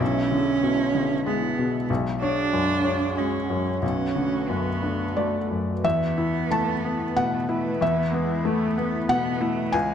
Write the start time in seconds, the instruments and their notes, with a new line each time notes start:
Already playing: felt piano B2, analog synth pad G#3 E4 E5
0.00 felt piano B1, cello C#4
0.32 felt piano D3
0.63 felt piano B2
0.95 felt piano D3
1.26 felt piano G#3, cello B3
1.59 felt piano B2
1.89 felt piano B1, analog synth pad F#4 C#5
2.20 cello D4, felt piano C#5
2.53 felt piano F#2
2.84 felt piano C#5
3.17 felt piano G#3, cello C#4
3.50 felt piano F#2
3.81 felt piano B1, analog synth pad A3 B4, cello C#4
4.16 felt piano D3
4.49 felt piano F#2, cello B3
4.83 felt piano D4
5.17 felt piano A3 D5
5.51 felt piano F#2
5.84 felt piano E2 E5, analog synth pad B3 E4 B4, cello B3
6.18 felt piano E4
6.51 felt piano A3 A5
6.84 felt piano B3
7.16 felt piano B2 F#5, cello A3
7.49 cello A3, felt piano E4
7.81 felt piano E2 E5, cello B3
8.14 cello G#3, felt piano B3
8.45 felt piano A3, cello A3
8.78 cello B3, felt piano B3
9.08 felt piano B2 F#5, cello B3
9.41 cello A3, felt piano E4
9.72 felt piano C#2 G#5, analog synth pad E3 E4 C#5, cello G#3